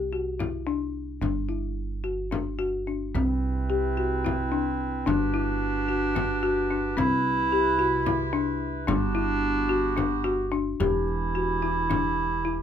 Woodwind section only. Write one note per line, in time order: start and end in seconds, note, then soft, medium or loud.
3.16 5.06 C3 medium
3.16 5.06 E4 medium
3.16 5.05 B4 medium
5.07 6.96 F#4 medium
5.07 6.96 G4 medium
5.07 8.84 B4 medium
6.98 8.86 C3 medium
6.98 8.87 E4 medium
8.88 10.62 B3 medium
8.88 10.62 F#4 medium
8.88 10.62 G4 medium
10.79 12.62 E3 medium
10.79 12.62 D4 medium
10.79 12.62 G4 medium